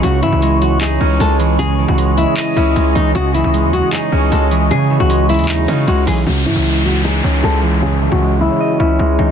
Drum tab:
HH |x---x---x---x---x-------x---x---|x-------x---x---x---x---x---x---|x---x---x---x---x-------x---x---|x-------x---xxxxx---x---x---o---|
CP |----------------x---------------|----------------x---------------|----------------x---------------|----------------x---------------|

HH |--------------------------------|--------------------------------|
CP |--------------------------------|--------------------------------|